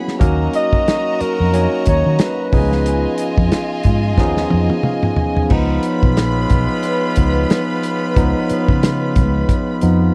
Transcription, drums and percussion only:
0.08 snare soft
0.21 kick loud
0.21 closed hi-hat medium
0.53 closed hi-hat medium
0.73 kick medium
0.88 snare loud
0.88 closed hi-hat medium
1.21 closed hi-hat medium
1.54 closed hi-hat medium
1.86 kick medium
1.86 closed hi-hat medium
2.19 snare loud
2.19 closed hi-hat medium
2.52 kick loud
2.52 open hi-hat medium
2.72 snare soft
2.86 closed hi-hat medium
3.18 closed hi-hat medium
3.38 kick medium
3.52 snare loud
3.52 closed hi-hat medium
3.83 kick medium
3.83 closed hi-hat medium
4.18 kick medium
4.18 snare medium
4.37 snare medium
4.50 high tom medium
4.70 high tom medium
4.83 mid tom medium
5.03 mid tom medium
5.16 floor tom loud
5.37 floor tom medium
5.50 kick loud
5.50 crash loud
5.83 closed hi-hat medium
6.03 kick medium
6.17 snare loud
6.17 closed hi-hat medium
6.50 kick medium
6.50 closed hi-hat medium
6.83 closed hi-hat medium
7.16 kick medium
7.16 closed hi-hat medium
7.50 snare loud
7.50 closed hi-hat medium
7.83 closed hi-hat medium
8.17 kick loud
8.17 closed hi-hat medium
8.49 closed hi-hat medium
8.68 kick medium
8.83 snare loud
8.83 closed hi-hat medium
9.16 kick loud
9.16 closed hi-hat medium
9.49 kick medium
9.49 closed hi-hat medium
9.81 closed hi-hat medium

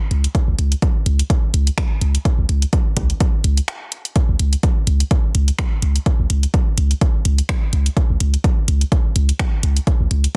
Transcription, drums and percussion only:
0.11 closed hi-hat medium
0.24 closed hi-hat medium
0.35 kick loud
0.35 closed hi-hat soft
0.59 closed hi-hat medium
0.72 closed hi-hat medium
0.82 kick loud
0.82 closed hi-hat soft
1.06 closed hi-hat medium
1.19 closed hi-hat medium
1.30 kick loud
1.30 closed hi-hat soft
1.54 closed hi-hat medium
1.67 closed hi-hat medium
1.78 finger snap loud
1.78 kick loud
1.78 closed hi-hat soft
2.01 closed hi-hat medium
2.15 closed hi-hat medium
2.25 kick loud
2.25 closed hi-hat soft
2.49 closed hi-hat medium
2.62 closed hi-hat medium
2.73 kick loud
2.73 closed hi-hat soft
2.97 kick medium
2.97 closed hi-hat medium
3.10 closed hi-hat medium
3.20 kick loud
3.20 closed hi-hat soft
3.44 closed hi-hat medium
3.57 closed hi-hat medium
3.68 finger snap loud
3.68 closed hi-hat soft
3.92 closed hi-hat medium
4.05 closed hi-hat medium
4.16 kick loud
4.16 closed hi-hat soft
4.39 closed hi-hat loud
4.53 closed hi-hat medium
4.63 kick loud
4.63 closed hi-hat soft
4.87 closed hi-hat medium
5.00 closed hi-hat medium
5.11 kick loud
5.11 closed hi-hat soft
5.35 closed hi-hat medium
5.48 closed hi-hat medium
5.59 finger snap loud
5.59 kick loud
5.59 closed hi-hat soft
5.82 closed hi-hat medium
5.96 closed hi-hat medium
6.06 kick loud
6.06 closed hi-hat soft
6.30 closed hi-hat loud
6.43 closed hi-hat medium
6.54 kick loud
6.54 closed hi-hat soft
6.78 closed hi-hat medium
6.91 closed hi-hat medium
7.01 kick loud
7.01 closed hi-hat soft
7.25 closed hi-hat medium
7.38 closed hi-hat medium
7.49 finger snap loud
7.49 kick loud
7.49 closed hi-hat soft
7.73 closed hi-hat loud
7.86 closed hi-hat medium
7.97 kick loud
7.97 closed hi-hat soft
8.20 closed hi-hat loud
8.34 closed hi-hat medium
8.44 kick loud
8.44 closed hi-hat soft
8.68 closed hi-hat loud
8.81 closed hi-hat medium
8.92 kick loud
8.92 closed hi-hat soft
9.16 closed hi-hat loud
9.29 closed hi-hat soft
9.39 finger snap loud
9.39 kick loud
9.39 closed hi-hat soft
9.63 closed hi-hat loud
9.77 closed hi-hat medium
9.87 kick loud
9.87 closed hi-hat soft
10.11 closed hi-hat loud
10.24 closed hi-hat soft

